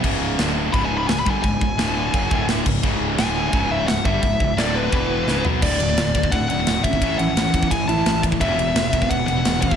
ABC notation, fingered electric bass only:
X:1
M:4/4
L:1/8
Q:1/4=172
K:Dlyd
V:1 name="Fingered electric bass" clef=bass
C,,,2 D,,,2 C,,,2 C,,, =G,,, | C,,, C,,, D,,,2 F,,, D,,,2 C,,, | C,,,2 D,,,2 C,,,2 C,,, =G,,, | C,,, C,,, D,,,2 E,,,2 C,,, B,,, |
D,,, D,,, D,,, D,,, D,,, D,,, D,,, G,,, | A,,, A,,, A,,, E,, A,,, A,,, A,,, A,,, | E,,, E,,, E,,, E,,, E,,, E,,, E,,, E,,, |]